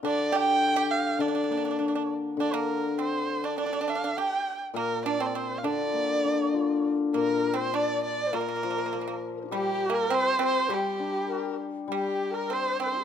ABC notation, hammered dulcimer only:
X:1
M:2/4
L:1/8
Q:1/4=101
K:none
V:1 name="Hammered dulcimer" clef=bass
D,4 | D, _B, D2 | D,4- | D,2 z2 |
_B,,3 D, | _B, D F2 | _B,,4 | _B,, F, _B,2 |
G,4 | G, D3 | G,4 |]